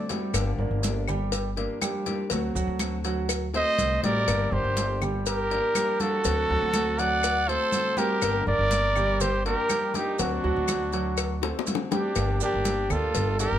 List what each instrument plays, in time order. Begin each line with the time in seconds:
0.09 grand piano G3 G4 G5, nylon-string guitar A3 C4 F#4, cowbell, high conga, maracas
0.33 upright bass G1, nylon-string guitar D3 F3 A#3 D4 G4, cowbell, high conga, claves, maracas
0.58 upright bass G1, grand piano A#3 A#4 D5, high conga
0.71 upright bass G1
0.83 nylon-string guitar F3 A#3 D4 G4, cowbell, high conga, maracas
1.08 grand piano G3 G4 G5, high conga, low conga, claves, maracas
1.32 muted nylon-string guitar stroke, cowbell, high conga, maracas
1.57 nylon-string guitar F3 A#3 D4 G4, grand piano A#3 A#4 D5, cowbell, high conga
1.81 nylon-string guitar F3 A#3 D4 G4, grand piano G3 G4 G5, cowbell, high conga, claves, maracas
2.06 nylon-string guitar F3 A#3 D4 G4, cowbell, high conga, maracas
2.30 upright bass D2, nylon-string guitar D3 A3 C4 F#4, grand piano F#3 F#4 F#5, cowbell, maracas
2.55 upright bass D2, grand piano F#3 F#4 F#5, high conga, maracas
2.67 upright bass D2
2.79 nylon-string guitar D3 A3 C4 F#4, cowbell, high conga, claves, maracas
3.04 grand piano F#3 F#4 F#5, cowbell, high conga, maracas
3.28 muted nylon-string guitar stroke, cowbell, high conga, claves, maracas
3.54 grand piano A3 A4 C5, nylon-string guitar A3 C4 F#4, trumpet C5 D#5, cowbell, high conga
3.78 upright bass C2, nylon-string guitar D3 A3 C4 F#4, cowbell, high conga, maracas
4.03 upright bass A1, grand piano G3 G4 G5, nylon-string guitar A3 C4 F#4, trumpet A#4 D5, cowbell, high conga, maracas
4.28 upright bass G1, nylon-string guitar D3 F3 A#3 D4 G4, cowbell, claves, maracas
4.52 upright bass G1, grand piano A#3 A#4 D5, trumpet G4 C5, high conga
4.64 upright bass G1
4.77 nylon-string guitar F3 A#3 D4 G4, cowbell, high conga, maracas
5.02 grand piano G3 G4 G5, high conga, low conga, claves, maracas
5.26 trumpet G4 A#4, muted nylon-string guitar stroke, cowbell, high conga, maracas
5.51 nylon-string guitar F3 A#3 D4 G4, grand piano A#3 A#4 D5, cowbell, high conga
5.75 nylon-string guitar F3 A#3 D4 G4, grand piano G3 G4 G5, cowbell, high conga, claves, maracas
6.00 nylon-string guitar F3 A#3 D4 G4, trumpet F#4 A4, cowbell, high conga, maracas
6.24 upright bass D2, nylon-string guitar D3 A3 C4 F#4, grand piano F#3 F#4 F#5, cowbell, maracas
6.49 upright bass D2, grand piano F#3 F#4 F#5, high conga
6.61 upright bass D2
6.73 nylon-string guitar D3 A3 C4 F#4, cowbell, high conga, claves, maracas
6.99 grand piano F#3 F#4 F#5, trumpet D5 F#5, cowbell, high conga, maracas
7.23 muted nylon-string guitar stroke, cowbell, high conga, claves, maracas
7.48 grand piano A3 A4 C5, nylon-string guitar A3 C4 F#4, trumpet A4 C5, cowbell, high conga
7.72 nylon-string guitar D3 A3 C4 F#4, cowbell, high conga, maracas
7.97 grand piano G3 G4 G5, nylon-string guitar A3 C4 F#4, trumpet G4 A#4, cowbell, high conga, maracas
8.21 upright bass G1, nylon-string guitar D3 F3 A#3 D4 G4, cowbell, high conga, claves, maracas
8.47 upright bass G1, grand piano A#3 A#4 D5, trumpet A#4 D5, high conga
8.59 upright bass G1
8.70 nylon-string guitar F3 A#3 D4 G4, cowbell, high conga, maracas
8.96 grand piano G3 G4 G5, high conga, low conga, claves, maracas
9.20 trumpet G4 C5, muted nylon-string guitar stroke, cowbell, high conga, low conga, maracas
9.45 nylon-string guitar F3 A#3 D4 G4, grand piano A#3 A#4 D5, trumpet G4 A#4, cowbell, high conga
9.69 nylon-string guitar F3 A#3 D4 G4, grand piano G3 G4 G5, cowbell, high conga, claves, maracas
9.94 nylon-string guitar F3 A#3 D4 G4, trumpet D#4 G4, cowbell, high conga, maracas
10.19 upright bass D2, nylon-string guitar D3 A3 C4 F#4, grand piano F#3 F#4 F#5, trumpet D4 F#4, cowbell, high conga, maracas
10.44 upright bass D2, grand piano F#3 F#4 F#5, high conga
10.56 upright bass D2
10.67 nylon-string guitar D3 A3 C4 F#4, cowbell, high conga, claves, maracas
10.92 grand piano F#3 F#4 F#5, cowbell, high conga, maracas
11.17 muted nylon-string guitar stroke, cowbell, high conga, claves, maracas
11.42 grand piano A3 A4 C5, nylon-string guitar A3 C4 F#4, cowbell, high bongo, high conga
11.59 high bongo
11.66 nylon-string guitar D3 A3 C4 F#4, cowbell, high conga, maracas
11.75 low bongo
11.91 grand piano G3 G4 G5, nylon-string guitar A3 C4 F#4, trumpet D4 G4, cowbell, low bongo, high conga, maracas
12.15 upright bass G1, nylon-string guitar D3 F3 A#3 D4 G4, cowbell, high conga, claves, maracas
12.40 grand piano A#3 A#4 D5, trumpet D4 G4, high conga, maracas
12.54 upright bass G1
12.64 nylon-string guitar F3 A#3 D4 G4, cowbell, high conga, maracas
12.90 upright bass D2, grand piano A#3 G4 D5, trumpet F4 A4, high conga, low conga, claves, maracas
13.14 upright bass G1, muted nylon-string guitar stroke, cowbell, high conga, low conga, maracas
13.39 nylon-string guitar F3 A#3 D4 G4, grand piano A#3 A#4 D5, trumpet G4 A#4, cowbell, high conga, maracas
13.52 upright bass G1